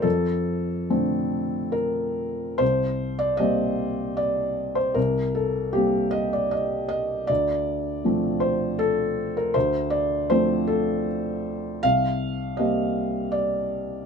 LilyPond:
<<
  \new Staff \with { instrumentName = "Felt piano" } { \time 3/4 \key c \dorian \tempo 4 = 78 a'2 bes'4 | c''8. d''16 ees''4 d''8. c''16 | bes'8 a'8 g'8 ees''16 d''16 ees''8 ees''8 | d''4. c''8 a'8. bes'16 |
c''8 d''8 c''8 a'8 r4 | f''4 ees''4 d''4 | }
  \new Staff \with { instrumentName = "Felt piano" } { \clef bass \time 3/4 \key c \dorian f,4 <d a c'>2 | c,4 <g bes c'>2 | c,4 <g bes c'>2 | d,4 <f a c'>2 |
d,4 <f a c'>2 | c,4 <g bes c'>2 | }
>>